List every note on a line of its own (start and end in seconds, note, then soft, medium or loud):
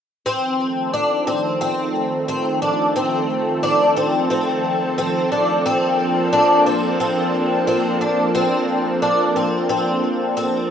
0.26 5.61 D#3 medium
0.26 10.71 F3 medium
0.26 5.61 A3 medium
0.26 0.93 C4 medium
0.26 10.71 C4 medium
0.26 10.71 A4 medium
0.93 1.27 D4 medium
1.27 1.60 C4 medium
1.61 2.27 C4 medium
2.28 2.62 C4 medium
2.62 2.95 D4 medium
2.96 3.63 C4 medium
3.63 3.96 D4 medium
3.96 4.29 C4 medium
4.30 4.97 C4 medium
4.98 5.31 C4 medium
5.32 5.65 D4 medium
5.65 10.71 A#3 medium
5.65 6.32 C4 medium
5.65 10.71 D4 medium
6.33 6.66 D4 medium
6.66 6.99 C4 medium
7.00 7.66 C4 medium
7.67 8.01 C4 medium
8.01 8.34 D4 medium
8.35 9.02 C4 medium
9.02 9.35 D4 medium
9.36 9.68 C4 medium
9.69 10.36 C4 medium
10.37 10.70 C4 medium